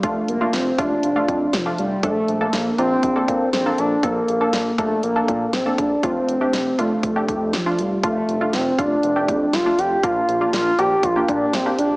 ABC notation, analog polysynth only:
X:1
M:4/4
L:1/16
Q:1/4=120
K:F
V:1 name="Analog polysynth"
[A,DF]2 z [A,DF]2 z [A,DF]2 z [A,DF]3 z [A,DF]2 z | [A,DA]2 z [B,DA]2 z [B,DF]2 z [B,DA]3 z [B,DA]2 z | [B,DA]2 z [B,DA]2 z [B,DA]2 z [B,DA]3 z [B,DA]2 z | [A,DF]2 z [A,DG]2 z [A,DF]2 z [A,DG]3 z [A,DF]2 z |
[A,DF]2 z [A,DF]2 z [A,DF]2 z [A,DG]3 z [A,DF]2 z | [B,DF]2 z [B,DF]2 z [B,DG]2 z [B,DG]3 z [B,DG]2 z |]